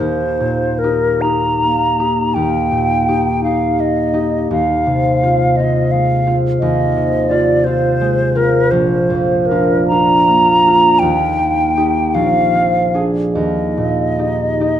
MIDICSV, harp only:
0, 0, Header, 1, 2, 480
1, 0, Start_track
1, 0, Key_signature, -3, "major"
1, 0, Tempo, 806452
1, 956, Tempo, 736196
1, 1916, Tempo, 714286
1, 2871, Time_signature, 12, 3, 24, 8
1, 3356, Tempo, 699301
1, 5756, Tempo, 783290
1, 6716, Tempo, 753769
1, 8156, Tempo, 818554
1, 9477, End_track
2, 0, Start_track
2, 0, Title_t, "Harp"
2, 0, Program_c, 0, 46
2, 0, Note_on_c, 0, 39, 31
2, 0, Note_on_c, 0, 58, 27
2, 0, Note_on_c, 0, 63, 24
2, 0, Note_on_c, 0, 67, 25
2, 240, Note_on_c, 0, 46, 23
2, 491, Note_off_c, 0, 67, 0
2, 492, Note_off_c, 0, 63, 0
2, 498, Note_on_c, 0, 63, 22
2, 500, Note_on_c, 0, 67, 26
2, 728, Note_off_c, 0, 67, 0
2, 729, Note_off_c, 0, 63, 0
2, 734, Note_on_c, 0, 63, 23
2, 737, Note_on_c, 0, 67, 25
2, 961, Note_off_c, 0, 58, 0
2, 969, Note_on_c, 0, 58, 24
2, 1200, Note_off_c, 0, 63, 0
2, 1200, Note_off_c, 0, 67, 0
2, 1206, Note_on_c, 0, 63, 24
2, 1209, Note_on_c, 0, 67, 27
2, 1437, Note_off_c, 0, 39, 0
2, 1445, Note_on_c, 0, 39, 28
2, 1669, Note_off_c, 0, 46, 0
2, 1677, Note_on_c, 0, 46, 25
2, 1911, Note_off_c, 0, 63, 0
2, 1911, Note_off_c, 0, 67, 0
2, 1917, Note_on_c, 0, 63, 25
2, 1921, Note_on_c, 0, 67, 27
2, 2155, Note_off_c, 0, 63, 0
2, 2161, Note_off_c, 0, 67, 0
2, 2163, Note_on_c, 0, 63, 25
2, 2169, Note_on_c, 0, 67, 27
2, 2381, Note_off_c, 0, 58, 0
2, 2389, Note_on_c, 0, 58, 26
2, 2618, Note_off_c, 0, 63, 0
2, 2618, Note_off_c, 0, 67, 0
2, 2624, Note_on_c, 0, 63, 26
2, 2628, Note_on_c, 0, 67, 27
2, 2867, Note_off_c, 0, 39, 0
2, 2875, Note_on_c, 0, 39, 33
2, 2888, Note_off_c, 0, 58, 0
2, 2888, Note_off_c, 0, 63, 0
2, 2889, Note_off_c, 0, 67, 0
2, 2890, Note_off_c, 0, 46, 0
2, 3115, Note_on_c, 0, 48, 26
2, 3362, Note_on_c, 0, 60, 26
2, 3365, Note_on_c, 0, 65, 28
2, 3597, Note_off_c, 0, 60, 0
2, 3606, Note_on_c, 0, 60, 27
2, 3607, Note_off_c, 0, 65, 0
2, 3615, Note_on_c, 0, 65, 29
2, 3841, Note_on_c, 0, 56, 27
2, 4066, Note_off_c, 0, 65, 0
2, 4068, Note_off_c, 0, 60, 0
2, 4073, Note_on_c, 0, 60, 27
2, 4077, Note_on_c, 0, 65, 28
2, 4307, Note_off_c, 0, 39, 0
2, 4315, Note_on_c, 0, 39, 33
2, 4542, Note_off_c, 0, 48, 0
2, 4550, Note_on_c, 0, 48, 29
2, 4779, Note_off_c, 0, 60, 0
2, 4779, Note_off_c, 0, 65, 0
2, 4785, Note_on_c, 0, 60, 29
2, 4790, Note_on_c, 0, 65, 30
2, 5022, Note_off_c, 0, 60, 0
2, 5026, Note_off_c, 0, 65, 0
2, 5030, Note_on_c, 0, 60, 28
2, 5035, Note_on_c, 0, 65, 29
2, 5262, Note_off_c, 0, 56, 0
2, 5270, Note_on_c, 0, 56, 31
2, 5498, Note_off_c, 0, 60, 0
2, 5498, Note_off_c, 0, 65, 0
2, 5504, Note_on_c, 0, 60, 31
2, 5509, Note_on_c, 0, 65, 33
2, 5754, Note_on_c, 0, 34, 38
2, 5772, Note_off_c, 0, 60, 0
2, 5775, Note_off_c, 0, 48, 0
2, 5775, Note_off_c, 0, 56, 0
2, 5777, Note_off_c, 0, 39, 0
2, 5990, Note_on_c, 0, 41, 28
2, 6237, Note_off_c, 0, 65, 0
2, 6241, Note_on_c, 0, 62, 29
2, 6244, Note_on_c, 0, 65, 32
2, 6481, Note_off_c, 0, 62, 0
2, 6484, Note_off_c, 0, 65, 0
2, 6488, Note_on_c, 0, 62, 28
2, 6492, Note_on_c, 0, 65, 31
2, 6713, Note_on_c, 0, 58, 30
2, 6948, Note_off_c, 0, 62, 0
2, 6952, Note_off_c, 0, 65, 0
2, 6956, Note_on_c, 0, 62, 27
2, 6959, Note_on_c, 0, 65, 30
2, 7184, Note_on_c, 0, 39, 42
2, 7205, Note_off_c, 0, 34, 0
2, 7207, Note_off_c, 0, 41, 0
2, 7209, Note_off_c, 0, 62, 0
2, 7210, Note_off_c, 0, 65, 0
2, 7411, Note_off_c, 0, 58, 0
2, 7419, Note_on_c, 0, 58, 31
2, 7662, Note_on_c, 0, 63, 30
2, 7664, Note_on_c, 0, 67, 32
2, 7901, Note_on_c, 0, 34, 38
2, 7926, Note_off_c, 0, 39, 0
2, 7927, Note_off_c, 0, 67, 0
2, 7928, Note_off_c, 0, 63, 0
2, 8160, Note_on_c, 0, 60, 27
2, 8388, Note_on_c, 0, 62, 29
2, 8393, Note_on_c, 0, 68, 30
2, 8629, Note_on_c, 0, 39, 34
2, 8641, Note_off_c, 0, 34, 0
2, 8645, Note_off_c, 0, 62, 0
2, 8646, Note_off_c, 0, 60, 0
2, 8646, Note_off_c, 0, 68, 0
2, 8877, Note_on_c, 0, 46, 26
2, 9118, Note_on_c, 0, 63, 27
2, 9122, Note_on_c, 0, 67, 28
2, 9355, Note_off_c, 0, 63, 0
2, 9359, Note_off_c, 0, 67, 0
2, 9362, Note_on_c, 0, 63, 26
2, 9366, Note_on_c, 0, 67, 28
2, 9477, Note_off_c, 0, 39, 0
2, 9477, Note_off_c, 0, 46, 0
2, 9477, Note_off_c, 0, 58, 0
2, 9477, Note_off_c, 0, 63, 0
2, 9477, Note_off_c, 0, 67, 0
2, 9477, End_track
0, 0, End_of_file